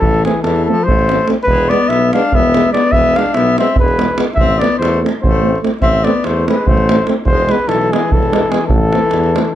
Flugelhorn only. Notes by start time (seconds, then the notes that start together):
0.00 A4
0.25 G#4
0.42 A4
0.65 A4
0.83 C5
1.44 B4
1.69 D5
1.88 E5
2.13 F5
2.35 E5
2.73 D5
2.92 E5
3.16 F5
3.34 E5
3.58 E5
3.80 B4
4.35 E5
4.59 D5
4.78 C5
5.22 C5
5.82 E5
6.04 D5
6.25 C5
6.49 B4
6.67 C5
7.26 C5
7.51 B4
7.68 A4
7.92 G#4
8.12 A4
8.51 G#4
8.67 A4